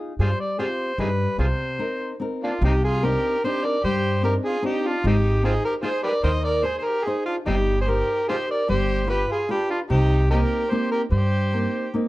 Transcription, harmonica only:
0.21 0.30 F4 medium
0.21 0.29 G#4 medium
0.21 0.39 C5 loud
0.40 0.58 D5 medium
0.59 0.66 F4 medium
0.59 0.67 G#4 medium
0.59 0.96 C5 medium
1.00 1.08 D#4 medium
1.00 1.08 G#4 medium
1.00 1.37 B4 medium
1.39 1.46 F4 soft
1.39 1.46 G#4 soft
1.39 2.17 C5 medium
2.44 2.50 A#3 soft
2.44 2.52 D4 soft
2.44 2.62 F4 medium
2.65 2.72 C4 medium
2.65 2.72 D#4 medium
2.65 2.83 G4 medium
2.84 3.06 G#4 medium
3.05 3.44 A#4 medium
3.44 3.66 C5 medium
3.64 3.84 D5 loud
3.84 4.21 C5 medium
4.25 4.34 A#4 medium
4.45 4.63 G#4 medium
4.66 4.89 G4 medium
4.87 5.05 F4 medium
5.07 5.15 C4 medium
5.07 5.15 D#4 medium
5.07 5.42 G4 medium
5.45 5.52 C4 medium
5.45 5.52 F4 medium
5.45 5.63 G#4 medium
5.65 5.73 A#4 loud
5.83 5.89 F4 medium
5.83 5.90 G#4 medium
5.83 6.02 C5 medium
6.03 6.10 G4 medium
6.03 6.12 B4 medium
6.03 6.22 D5 loud
6.24 6.30 A#4 medium
6.24 6.31 C5 medium
6.24 6.43 D#5 loud
6.44 6.65 D5 medium
6.63 6.78 C5 medium
6.78 6.85 C5 medium
6.84 7.05 A#4 medium
7.04 7.25 G#4 medium
7.26 7.35 F4 medium
7.47 7.56 C4 medium
7.47 7.55 D#4 medium
7.47 7.79 G4 medium
7.81 7.91 C5 medium
7.89 8.28 A#4 medium
8.29 8.36 F4 medium
8.29 8.35 G#4 medium
8.29 8.48 C5 medium
8.51 8.69 D5 medium
8.69 9.07 C5 medium
9.10 9.29 B4 medium
9.32 9.49 G#4 medium
9.51 9.70 G4 medium
9.70 9.79 F4 medium
9.91 10.28 G4 loud
10.30 10.39 D#4 medium
10.30 10.37 G4 medium
10.30 10.72 A#4 medium
10.70 10.91 C5 medium
10.92 11.01 A#4 medium
11.12 11.90 C5 medium

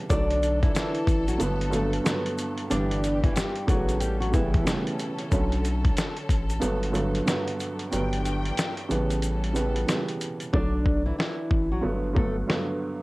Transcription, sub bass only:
0.10 0.69 B1 loud
1.07 1.37 A1 medium
1.41 1.99 G1 loud
2.71 3.30 G1 loud
3.68 4.62 A1 loud
5.32 5.91 B1 loud
6.29 6.59 A1 loud
6.63 7.21 G1 loud
7.93 8.52 G1 loud
8.91 9.84 A1 loud
10.54 11.12 B1 loud
11.51 11.80 A1 medium
11.84 12.43 G1 loud

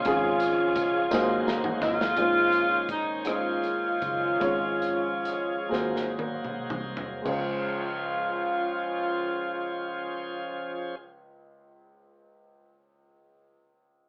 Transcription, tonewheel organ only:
0.00 1.06 C#4 medium
0.05 1.10 F3 medium
0.05 1.10 G#3 medium
0.05 2.15 G#4 medium
1.11 2.16 F#3 medium
1.11 2.16 A#3 medium
1.11 2.16 C5 medium
2.18 4.39 D#3 medium
2.18 4.39 C#4 soft
2.18 7.22 G#4 medium
2.18 4.39 C5 medium
4.40 5.69 F3 medium
4.40 5.69 G#3 medium
4.40 5.69 C#4 medium
5.71 7.24 F#3 medium
5.71 7.24 A#3 soft
5.71 7.24 C5 soft
7.26 10.95 F3 soft
7.26 10.96 C#4 medium
7.26 10.95 G#4 medium
7.26 10.95 C5 soft

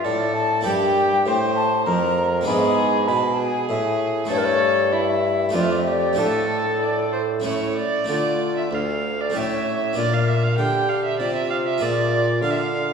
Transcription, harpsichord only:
0.00 0.60 D4 medium
0.00 0.61 A4 medium
0.05 0.62 A2 medium
0.61 1.22 A#3 medium
0.61 2.42 E4 medium
0.61 2.42 G4 medium
0.65 1.22 G2 medium
1.26 1.82 A2 medium
1.86 2.43 F2 medium
2.41 3.63 G#3 medium
2.41 3.64 B3 medium
2.41 3.64 D4 medium
2.46 3.04 G#2 medium
2.46 4.25 E4 medium
3.09 3.66 B2 medium
3.69 4.26 A2 medium
4.25 5.48 A3 medium
4.25 5.48 E4 medium
4.29 5.50 G2 medium
5.49 6.12 A3 soft
5.49 6.13 D4 soft
5.49 6.15 F4 soft
5.53 6.14 F2 medium
6.13 7.39 A3 medium
6.13 7.40 D4 medium
6.13 7.41 F4 medium
6.17 7.41 A2 medium
7.40 8.03 A3 soft
7.40 8.06 C#4 soft
7.40 8.07 E4 soft
7.44 7.74 A2 medium
8.04 9.28 A3 soft
8.04 9.29 D4 soft
8.04 9.30 F4 soft
8.09 8.68 D3 soft
8.71 9.30 D2 soft
9.30 9.92 A3 soft
9.30 9.93 C#4 soft
9.30 9.94 G4 soft
9.34 9.92 A2 soft
9.93 10.54 A#2 soft
9.93 11.75 D4 soft
9.93 11.76 F4 soft
10.58 11.16 D3 soft
11.20 11.77 C3 soft
11.78 12.39 A#2 medium
11.78 12.93 F4 soft
11.78 12.93 G#4 soft
12.43 12.93 D3 soft

